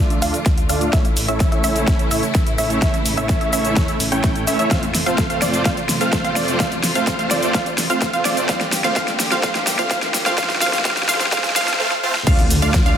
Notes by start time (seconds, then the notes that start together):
Already playing: D3 F3 A3 D4 F4 D5 E5
0.10 closed hi-hat, cabasa
0.22 D2 A3 D4 F4 D5 F5, open hi-hat, cabasa
0.34 closed hi-hat, cabasa
0.46 D2, kick, snare, closed hi-hat, cabasa
0.58 closed hi-hat, cabasa
0.69 D2 A3 D4 F4 D5 F5, open hi-hat, cabasa
0.81 closed hi-hat, cabasa
0.93 A1 C#3 E3 A3 C#4 E4 C#5 E5, kick, snare, closed hi-hat, cabasa
1.05 A1, closed hi-hat, cabasa
1.17 A1, open hi-hat, cabasa
1.28 A1 A3 C#4 E4 C#5 E5, closed hi-hat, cabasa
1.40 A1, kick, snare, closed hi-hat, cabasa
1.52 A3 C#4 E4 C#5 E5, closed hi-hat, cabasa
1.64 A1 A3 C#4 E4 C#5 E5, open hi-hat, cabasa
1.76 closed hi-hat, cabasa
1.87 A1, kick, snare, closed hi-hat, cabasa
1.99 closed hi-hat, cabasa
2.11 A1 A3 C#4 E4 C#5 E5, open hi-hat, cabasa
2.23 closed hi-hat, cabasa
2.35 A1, kick, snare, closed hi-hat, cabasa
2.47 closed hi-hat, cabasa
2.58 A1 A3 C#4 E4 C#5 E5, open hi-hat, cabasa
2.70 closed hi-hat, cabasa
2.82 A1 A3 E4 E5, kick, snare, closed hi-hat, cabasa
2.94 A1, closed hi-hat, cabasa
3.06 A1, open hi-hat, cabasa
3.17 A1 A3 C#4 E4 C#5 E5, closed hi-hat, cabasa
3.29 A1, kick, snare, closed hi-hat, cabasa
3.41 A3 C#4 E4 C#5 E5, closed hi-hat, cabasa
3.53 A1 A3 C#4 E4 C#5 E5, open hi-hat, cabasa
3.65 closed hi-hat, cabasa
3.76 E2, kick, snare, closed hi-hat, cabasa
3.88 closed hi-hat, cabasa
4.00 A1, open hi-hat, cabasa
4.12 A3 C#4 E4 C#5 G5, closed hi-hat, cabasa
4.24 A2, kick, snare, closed hi-hat, cabasa
4.36 closed hi-hat, cabasa
4.47 A1 A3 C#4 E4 C#5 E5, open hi-hat, cabasa
4.59 A3 C#4 E4 C#5 E5, closed hi-hat, cabasa
4.71 F1 C3 F3 A3 C4 F4 C5 F5, kick, snare, closed hi-hat, riser, cabasa
4.83 F1, closed hi-hat, cabasa
4.95 F1, snare, open hi-hat, cabasa
5.06 F1 A3 C4 F4 C5 F5, closed hi-hat, cabasa
5.18 F1, kick, snare, closed hi-hat, cabasa
5.30 A3 C4 F4 C5 F5, closed hi-hat, cabasa
5.42 F1 A3 C4 F4 C5 D5, snare, open hi-hat, cabasa
5.54 closed hi-hat, cabasa
5.65 F1 A3 C4 F4 C5 F5, kick, snare, closed hi-hat, cabasa
5.77 closed hi-hat, cabasa
5.89 F1, snare, open hi-hat, cabasa
6.01 A3 C4 F4 C5 F5, closed hi-hat, cabasa
6.13 F1, kick, snare, closed hi-hat, cabasa
6.24 A3 C4 F4 C5 F5, closed hi-hat, cabasa
6.36 F1 A3 C4 F4 C5 D5, snare, open hi-hat, cabasa
6.48 closed hi-hat, cabasa
6.60 F1 F5, kick, snare, closed hi-hat, cabasa
6.72 F1, closed hi-hat, cabasa
6.84 F1, snare, open hi-hat, cabasa
6.95 F1 A3 C4 F4 C5 F5, closed hi-hat, cabasa
7.07 F1, kick, snare, closed hi-hat, cabasa
7.19 A3 C4 F4 C5 F5, closed hi-hat, cabasa
7.31 F1 A3 C4 F4 C5 D5, snare, open hi-hat, cabasa
7.43 closed hi-hat, cabasa
7.54 F1 A3 C4 F4 C5 F5, kick, snare, closed hi-hat, cabasa
7.66 closed hi-hat, cabasa
7.78 F1, snare, open hi-hat, cabasa
7.90 A3 C4 F4 C5 F5, closed hi-hat, cabasa
8.02 F1, kick, snare, closed hi-hat, cabasa
8.13 A3 C4 F4 C5 F5, closed hi-hat, cabasa
8.25 F1 A3 C4 F4 C5 D5, snare, open hi-hat, cabasa
8.37 closed hi-hat, cabasa
8.49 G1 D3 G3 A3 A#3 C4 G4 C5 F5, kick, snare, closed hi-hat, cabasa
8.61 G1, snare, closed hi-hat, cabasa
8.72 G1, snare, open hi-hat, cabasa
8.84 G1 A3 C4 F4 C5 F5, snare, closed hi-hat, cabasa
8.96 G1 A3 C4 F4 C5 F5, kick, snare, closed hi-hat, cabasa
9.08 snare, closed hi-hat, cabasa
9.20 G1, snare, open hi-hat, cabasa
9.32 A3 C4 F4 C5 F5, snare, closed hi-hat, cabasa
9.43 G1 A3 C4 F4 C5 F5, kick, snare, closed hi-hat, cabasa
9.55 snare, closed hi-hat, cabasa
9.67 G1, snare, open hi-hat, cabasa
9.79 A3 C4 F4 C5 F5, snare, closed hi-hat, cabasa
9.91 G1 A3 C4 F4 C5 F5, kick, snare, closed hi-hat, cabasa
10.02 snare, closed hi-hat, cabasa
10.14 G1, snare, open hi-hat, cabasa
10.26 A3 C4 F4 C5 F5, snare, closed hi-hat, cabasa
10.38 G1 A3 C4 F4 C5 F5, kick, snare, closed hi-hat, cabasa
10.44 snare
10.50 G1, snare, closed hi-hat, cabasa
10.56 snare
10.61 G1 A3 C4 F4 C5 F5, snare, open hi-hat, cabasa
10.67 snare
10.73 G1, snare, closed hi-hat, cabasa
10.79 snare
10.85 G1 A3 C4 F4 C5 F5, kick, snare, closed hi-hat, cabasa
10.91 snare
10.97 snare, closed hi-hat, cabasa
11.03 snare
11.09 G1 A3 C4 F4 C5 F5, snare, open hi-hat, cabasa
11.15 snare
11.21 snare, closed hi-hat, cabasa
11.26 snare
11.32 G1 A3 C4 F4 C5 F5, kick, snare, closed hi-hat, cabasa
11.38 snare
11.44 snare, closed hi-hat, cabasa
11.50 snare
11.56 G2 A3 C4 F4 C5 F5, snare, open hi-hat, cabasa
11.62 snare
11.68 snare, closed hi-hat, cabasa
11.74 snare
11.80 A3 C4 F4 C5 F5, snare
11.91 snare
12.03 A3 C4 F4 C5 F5
12.15 snare
12.27 D2 D3 F3 A3 D4 F4 D5 F5, kick, closed hi-hat, crash, impact, cabasa
12.39 D2, closed hi-hat, cabasa
12.51 D2, open hi-hat, cabasa
12.62 D2 A3 D4 F4 D5 F5, closed hi-hat, cabasa
12.74 D2, kick, snare, closed hi-hat, cabasa
12.86 A3 D4 F4 D5 F5, closed hi-hat, cabasa